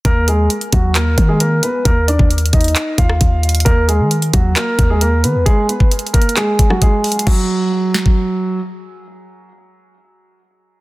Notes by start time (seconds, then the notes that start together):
0.05 D#2 A#3 A#4, kick, closed hi-hat
0.28 G#3 G#4, closed hi-hat
0.50 closed hi-hat
0.61 closed hi-hat
0.72 D#2 F#3 F#4, kick, closed hi-hat
0.95 A#3 A#4, clap, closed hi-hat
1.18 D#3, kick, closed hi-hat
1.29 G#3 G#4
1.40 A#3 A#4, closed hi-hat
1.63 B3 B4, closed hi-hat
1.85 D#2 A#3 A#4, kick, closed hi-hat
2.08 D4 D5, closed hi-hat
2.19 D#2, kick
2.31 closed hi-hat
2.38 closed hi-hat
2.46 closed hi-hat
2.53 D#2 D#4 D#5, kick, closed hi-hat, open hi-hat
2.61 closed hi-hat
2.64 closed hi-hat
2.68 closed hi-hat
2.76 clap, closed hi-hat
2.98 D#2 F4 F5, kick, closed hi-hat
3.09 cross-stick
3.21 D#2, kick, closed hi-hat
3.43 closed hi-hat
3.49 closed hi-hat
3.55 closed hi-hat
3.60 closed hi-hat
3.65 D#2 A#3 A#4, kick, closed hi-hat
3.88 G#3 G#4, closed hi-hat
4.00 D#3
4.11 closed hi-hat
4.22 closed hi-hat
4.33 D#2 F#3 F#4, kick, closed hi-hat
4.56 A#3 A#4, clap, closed hi-hat
4.79 D#2, kick, closed hi-hat
4.90 G#3 G#4
5.01 A#3 A#4, closed hi-hat
5.24 D#3 B3 B4, closed hi-hat
5.35 D#2
5.46 G#3 G#4, kick, closed hi-hat
5.69 B3 B4, closed hi-hat
5.80 kick
5.91 closed hi-hat
5.99 closed hi-hat
6.07 closed hi-hat
6.14 A#3 A#4, kick, closed hi-hat
6.22 closed hi-hat
6.29 closed hi-hat
6.36 G#3 G#4, clap, closed hi-hat
6.59 kick, closed hi-hat
6.70 F#3 F#4, cross-stick
6.82 G#3 G#4, kick, closed hi-hat
7.04 closed hi-hat, open hi-hat
7.12 closed hi-hat
7.19 closed hi-hat
7.27 F#3, kick, crash
7.94 snare
8.06 kick